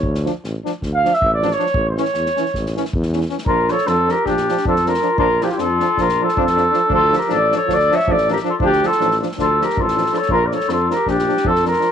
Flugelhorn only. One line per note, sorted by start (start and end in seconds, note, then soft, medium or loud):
0.00 0.27 C#5 medium
0.94 1.15 F5 loud
1.14 1.33 E5 loud
1.34 1.54 D5 loud
1.53 1.88 C#5 loud
1.90 2.83 C#5 medium
3.46 3.71 A#4 loud
3.70 3.89 C#5 medium
3.87 4.12 A4 loud
4.11 4.28 A#4 medium
4.26 4.66 G4 medium
4.68 4.89 A4 medium
4.87 5.19 A#4 loud
5.20 5.45 A#4 loud
5.43 5.53 F4 medium
5.43 5.48 G4 medium
5.52 5.62 G4 medium
5.60 6.03 A4 loud
6.01 6.26 A#4 medium
6.24 6.40 A4 medium
6.43 6.90 A4 loud
6.94 7.13 A4 loud
7.18 7.31 A#4 medium
7.33 7.52 D5 loud
7.56 7.75 C#5 loud
7.74 7.97 D5 loud
7.95 8.13 E5 loud
8.11 8.29 D5 loud
8.31 8.38 A#4 medium
8.48 8.55 A4 medium
8.65 8.88 G4 loud
8.86 9.16 A4 loud
9.41 9.66 A4 medium
9.64 9.83 A#4 medium
9.82 10.19 A4 medium
10.18 10.31 C#5 medium
10.31 10.48 A#4 loud
10.46 10.55 D5 medium
10.54 10.71 C#5 medium
10.70 10.90 A4 medium
10.91 11.11 A#4 medium
11.09 11.49 G4 medium
11.47 11.66 A4 loud
11.67 11.92 A#4 medium